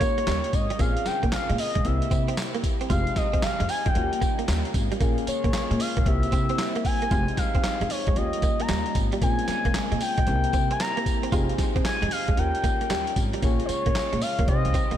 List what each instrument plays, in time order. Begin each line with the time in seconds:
Already playing: analog synth pad C#3 G3 A#3 D#4, synth keys A#3 C#4 F4 G4, analog synth lead C#5
0.01 upright bass D#3, clean electric guitar A#3, kick, closed hi-hat, tambourine
0.18 clean electric guitar A#3, closed hi-hat
0.27 upright bass D#2, clean electric guitar G3, snare, clap, closed hi-hat, tambourine
0.44 closed hi-hat
0.53 upright bass G#1, analog synth lead D#5, muted clean electric guitar stroke, kick, closed hi-hat, tambourine
0.70 clean electric guitar G3, closed hi-hat
0.79 upright bass A#1, analog synth pad C#3 G#3 F4, clean electric guitar A#3, synth keys C4 C#4 F4 G#4, analog synth lead F5, kick, closed hi-hat, tambourine
0.97 closed hi-hat
1.06 analog synth lead G5, muted clean electric guitar stroke, muted upright bass stroke, snare, closed hi-hat, tambourine
1.23 upright bass A#2, clean electric guitar A#3, kick, closed hi-hat
1.32 analog synth lead F5, muted upright bass stroke, snare, clap, closed hi-hat, tambourine
1.49 upright bass A#2, clean electric guitar G#3, closed hi-hat
1.58 analog synth lead D#5, muted clean electric guitar stroke, open hi-hat, tambourine
1.75 upright bass A#1, clean electric guitar G#3, kick, closed hi-hat
1.84 upright bass C2, analog synth pad C3 G3 E4, synth keys A#3 C4 E4 G4, analog synth lead E5, muted clean electric guitar stroke, closed hi-hat
2.02 closed hi-hat
2.11 upright bass C3, clean electric guitar C4, kick, closed hi-hat, tambourine
2.28 clean electric guitar C4, closed hi-hat
2.37 snare, clap, closed hi-hat, tambourine
2.54 clean electric guitar A#3, closed hi-hat
2.64 muted clean electric guitar stroke, kick, closed hi-hat, tambourine
2.81 clean electric guitar C4, closed hi-hat
2.89 upright bass F1, analog synth pad F3 G#3 D#4, synth keys G#3 C4 D#4 G4, clean electric guitar F4, analog synth lead F5, kick, closed hi-hat, tambourine
3.07 closed hi-hat
3.16 analog synth lead D#5, muted clean electric guitar stroke, muted upright bass stroke, kick, snare, closed hi-hat, tambourine
3.33 upright bass F2, clean electric guitar C4, kick, closed hi-hat
3.42 analog synth lead F5, muted upright bass stroke, snare, clap, closed hi-hat, tambourine
3.60 upright bass F2, clean electric guitar G#3, closed hi-hat
3.69 analog synth lead G#5, muted clean electric guitar stroke, open hi-hat, tambourine
3.86 upright bass F2, clean electric guitar G#3, analog synth lead G5, kick, closed hi-hat
3.95 upright bass D#2, analog synth pad C#3 G3 A#3, synth keys A#3 C#4 F4 F#4, muted clean electric guitar stroke, closed hi-hat
4.04 synth keys G4
4.13 closed hi-hat
4.21 upright bass D#3, clean electric guitar A#3, kick, closed hi-hat, tambourine
4.39 clean electric guitar A#3, closed hi-hat
4.48 upright bass D#2, clean electric guitar G3, snare, clap, closed hi-hat, tambourine
4.65 closed hi-hat
4.74 upright bass G#1, muted clean electric guitar stroke, kick, closed hi-hat, tambourine
4.92 clean electric guitar G3, closed hi-hat
5.00 upright bass A#1, analog synth pad G#3 F4, synth keys A#3 C#4 F4 G#4, clean electric guitar A#3, kick, closed hi-hat, tambourine
5.18 closed hi-hat
5.27 analog synth lead C#5, muted upright bass stroke, muted clean electric guitar stroke, closed hi-hat, tambourine
5.44 upright bass A#2, clean electric guitar A#3, kick, closed hi-hat
5.53 muted upright bass stroke, snare, clap, closed hi-hat, tambourine
5.71 upright bass A#2, clean electric guitar G#3, closed hi-hat
5.80 analog synth lead F5, muted clean electric guitar stroke, open hi-hat, tambourine
5.97 upright bass A#1, clean electric guitar A#3, kick, closed hi-hat
6.06 upright bass C2, analog synth pad C3 G3 A#3 E4, synth keys A#3 C4 E4 G4, analog synth lead E5, muted clean electric guitar stroke, kick, closed hi-hat
6.23 closed hi-hat
6.32 upright bass C3, clean electric guitar C4, kick, closed hi-hat, tambourine
6.49 clean electric guitar C4, closed hi-hat
6.58 snare, clap, closed hi-hat, tambourine
6.76 clean electric guitar A#3, closed hi-hat
6.85 analog synth lead G#5, muted clean electric guitar stroke, kick, open hi-hat, tambourine
7.02 clean electric guitar A#3, closed hi-hat
7.11 upright bass F1, analog synth pad F3 G#3 D#4, synth keys G#3 C4 D#4 G4, clean electric guitar F4, kick, closed hi-hat, tambourine
7.28 closed hi-hat
7.37 analog synth lead F5, muted upright bass stroke, muted clean electric guitar stroke, kick, snare, closed hi-hat, tambourine
7.55 upright bass F2, clean electric guitar C4, kick, closed hi-hat
7.64 muted upright bass stroke, snare, clap, closed hi-hat, tambourine
7.81 upright bass F2, clean electric guitar G#3, closed hi-hat
7.90 analog synth lead C#5, muted clean electric guitar stroke, open hi-hat, tambourine
8.07 upright bass F2, clean electric guitar G#3, kick, closed hi-hat
8.16 upright bass D#2, analog synth pad C#3 G3 A#3 D#4, synth keys A#3 C#4 F4 G4, analog synth lead D#5, muted clean electric guitar stroke, closed hi-hat
8.33 closed hi-hat
8.42 upright bass D#3, clean electric guitar A#3, kick, closed hi-hat, tambourine
8.60 clean electric guitar A#3, analog synth lead A#5, closed hi-hat
8.69 upright bass D#2, clean electric guitar G3, snare, clap, closed hi-hat, tambourine
8.86 closed hi-hat
8.95 upright bass G#1, muted clean electric guitar stroke, kick, closed hi-hat, tambourine
9.12 clean electric guitar G3, closed hi-hat
9.21 upright bass A#1, analog synth pad G#3 F4, clean electric guitar A#3, synth keys C4 C#4 F4 G#4, analog synth lead G#5, kick, closed hi-hat, tambourine
9.39 closed hi-hat
9.48 muted upright bass stroke, muted clean electric guitar stroke, snare, closed hi-hat, tambourine
9.65 upright bass A#2, clean electric guitar A#3, kick, closed hi-hat
9.74 muted upright bass stroke, snare, clap, closed hi-hat, tambourine
9.92 upright bass A#2, clean electric guitar G#3, closed hi-hat
10.00 analog synth lead G5, muted clean electric guitar stroke, open hi-hat, tambourine
10.18 upright bass A#1, clean electric guitar G#3, kick, closed hi-hat
10.27 upright bass C2, analog synth pad C3 G3 E4, synth keys C4 E4 G4 A#4, muted clean electric guitar stroke, closed hi-hat
10.44 closed hi-hat
10.53 upright bass C3, clean electric guitar C4, kick, closed hi-hat, tambourine
10.71 clean electric guitar C4, analog synth lead G#5, closed hi-hat
10.80 analog synth lead A#5, snare, clap, closed hi-hat, tambourine
10.97 clean electric guitar A#3, closed hi-hat
11.06 muted clean electric guitar stroke, kick, closed hi-hat, tambourine
11.23 clean electric guitar C4, closed hi-hat
11.32 upright bass F1, analog synth pad C3 F3 G#3 D#4, synth keys C4 D#4 G4 G#4, clean electric guitar F4, kick, closed hi-hat, tambourine
11.49 closed hi-hat
11.58 muted upright bass stroke, muted clean electric guitar stroke, kick, snare, closed hi-hat, tambourine
11.76 upright bass F2, clean electric guitar C4, kick, closed hi-hat
11.85 analog synth lead G#5, muted upright bass stroke, snare, clap, closed hi-hat, tambourine
12.02 upright bass F2, clean electric guitar G#3, closed hi-hat
12.11 analog synth lead F5, muted clean electric guitar stroke, open hi-hat, tambourine
12.28 upright bass F2, clean electric guitar G#3, kick, closed hi-hat
12.37 upright bass D#2, analog synth pad C#3 G3 A#3, synth keys C#4 F4 G4 A#4, analog synth lead G5, muted clean electric guitar stroke, closed hi-hat
12.55 closed hi-hat
12.64 upright bass D#3, clean electric guitar A#3, kick, closed hi-hat, tambourine
12.81 clean electric guitar A#3, closed hi-hat
12.90 upright bass D#2, clean electric guitar G3, snare, clap, closed hi-hat, tambourine
13.07 closed hi-hat
13.16 upright bass G#1, muted clean electric guitar stroke, kick, closed hi-hat, tambourine
13.33 clean electric guitar G3, closed hi-hat
13.42 upright bass A#1, analog synth pad G#3 F4, clean electric guitar A#3, synth keys C#4 F4 G#4 C#5, kick, closed hi-hat, tambourine
13.60 closed hi-hat
13.65 analog synth lead C5, muted clean electric guitar stroke, closed hi-hat, tambourine
13.69 analog synth lead C#5, muted upright bass stroke
13.86 upright bass A#2, clean electric guitar A#3, kick, closed hi-hat
13.95 muted upright bass stroke, snare, clap, closed hi-hat, tambourine
14.13 upright bass A#2, clean electric guitar G#3, closed hi-hat
14.21 analog synth lead F5, muted clean electric guitar stroke, open hi-hat, tambourine
14.39 upright bass F2, clean electric guitar A#3, kick, closed hi-hat
14.48 upright bass C3, analog synth pad D#3 G3 C4 G4, synth keys C4 D#4 G4 C5, analog synth lead D#5, muted clean electric guitar stroke, kick, closed hi-hat
14.65 upright bass C2, closed hi-hat
14.74 clean electric guitar C4, kick, closed hi-hat, tambourine
14.91 upright bass C2, clean electric guitar A#3, closed hi-hat